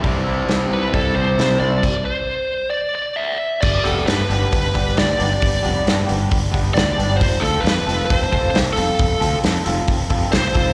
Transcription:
0.01 fingered electric bass C2, clean electric guitar C3 E3 G3 D4 E4, distorted electric guitar C4, kick, open hi-hat
0.24 clean electric guitar G3 D4 E4
0.46 fingered electric bass C2, clean electric guitar E3 G3 D4 E4, snare, open hi-hat
0.71 fingered electric bass C2, lead electric guitar B4
0.91 fingered electric bass C2, clean electric guitar C3 E3 G3 D4 E4, lead electric guitar A4, kick, open hi-hat
1.13 fingered electric bass C2, clean electric guitar G3 D4 E4, lead electric guitar C5
1.36 fingered electric bass C3, clean electric guitar E3 G3 D4 E4, open hi-hat
1.40 snare
1.59 fingered electric bass C2, clean electric guitar G3 D4 E4, lead electric guitar D5
1.83 kick, crash
2.05 lead electric guitar C5
2.70 lead electric guitar D5
2.95 lead electric guitar D5
3.16 lead electric guitar E5
3.61 fingered electric bass G1, lead electric guitar D5, kick, crash
3.84 fingered electric bass F1, clean electric guitar G3 B3 D4 G4, lead electric guitar A4, open hi-hat
4.06 fingered electric bass G2, lead electric guitar B4, snare, open hi-hat
4.29 fingered electric bass G1, clean electric guitar G3 B3 D4 G4, open hi-hat
4.52 fingered electric bass G1, lead electric guitar B4, kick, open hi-hat
4.74 fingered electric bass G1, clean electric guitar G3 B3 D4 G4, kick, open hi-hat
4.97 fingered electric bass D2, lead electric guitar D5, snare, open hi-hat
5.18 fingered electric bass G1, clean electric guitar G3 B3 D4 G4, open hi-hat
5.22 lead electric guitar D5
5.42 fingered electric bass G1, kick, open hi-hat
5.63 fingered electric bass F1, clean electric guitar G3 B3 D4 G4, open hi-hat
5.87 fingered electric bass G2, snare, open hi-hat
6.06 fingered electric bass G1, clean electric guitar G3 B3 D4 G4, open hi-hat
6.31 fingered electric bass G1, kick, open hi-hat
6.51 fingered electric bass G1, clean electric guitar G3 B3 D4 G4, kick, open hi-hat
6.74 fingered electric bass D2, lead electric guitar D5, snare, open hi-hat
6.97 fingered electric bass G1, clean electric guitar G3 B3 D4 G4, open hi-hat
7.17 lead electric guitar C5
7.21 fingered electric bass F1, kick, open hi-hat
7.40 fingered electric bass D2, clean electric guitar F3 C4 F4 A4, lead electric guitar A4
7.45 open hi-hat
7.60 fingered electric bass F2, lead electric guitar B4
7.66 snare, open hi-hat
7.86 fingered electric bass F1, clean electric guitar F3 C4 F4 A4, open hi-hat
8.05 lead electric guitar B4
8.10 fingered electric bass F1, kick, open hi-hat
8.16 lead electric guitar C5
8.31 fingered electric bass F1, clean electric guitar F3 C4 F4 A4, kick, open hi-hat
8.50 fingered electric bass C2, lead electric guitar C5
8.55 snare, open hi-hat
8.73 fingered electric bass F1, clean electric guitar C4 F4 A4, lead electric guitar A4
8.77 clean electric guitar F3, open hi-hat
8.99 fingered electric bass F1, kick, open hi-hat
9.20 fingered electric bass D2, clean electric guitar F3 C4 F4 A4, open hi-hat
9.44 fingered electric bass F2, snare, open hi-hat
9.65 fingered electric bass F1, clean electric guitar F3 C4 F4 A4, open hi-hat
9.88 fingered electric bass F1, kick, open hi-hat
10.10 fingered electric bass F1, clean electric guitar F3 C4 F4 A4, kick, open hi-hat
10.32 fingered electric bass C2, lead electric guitar C5, snare, open hi-hat
10.54 fingered electric bass F1, clean electric guitar F3 C4 F4 A4, kick, open hi-hat

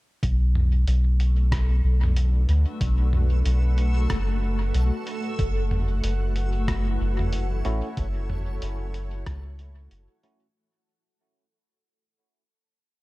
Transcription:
0.23 sub bass B1, ambient pad A3, synth texture A3 A4, kick, closed hi-hat
0.32 ambient pad F#4
0.49 ambient pad D4
0.55 mid tom
0.76 ambient pad F#5
0.87 sub bass B1, ambient pad B4, closed hi-hat
1.20 closed hi-hat
1.52 kick, cross-stick, closed hi-hat
1.84 sub bass B1
2.03 mid tom
2.17 closed hi-hat
2.48 sub bass D2, closed hi-hat
2.81 sub bass B1, kick, closed hi-hat
3.13 mid tom
3.45 sub bass B1, closed hi-hat
3.78 closed hi-hat
4.10 sub bass F#1, kick, cross-stick, closed hi-hat
4.74 sub bass B1, closed hi-hat
5.07 closed hi-hat
5.39 sub bass F#1, kick, closed hi-hat
5.63 ambient pad E4
5.71 mid tom
6.03 sub bass F#1, closed hi-hat
6.21 ambient pad C#5
6.36 closed hi-hat
6.68 kick, cross-stick, closed hi-hat
7.00 sub bass F#1
7.19 mid tom
7.33 closed hi-hat
7.65 sub bass A1, tine electric piano A3 C#4 E4 F#4, closed hi-hat
7.97 sub bass F#1, kick, closed hi-hat
8.30 mid tom
8.62 sub bass F#1, closed hi-hat
8.94 closed hi-hat
9.26 sub bass C#2, kick, cross-stick, closed hi-hat
9.59 closed hi-hat
9.91 sub bass F#1, closed hi-hat
10.23 tine electric piano A3 C#4 E4 F#4, closed hi-hat

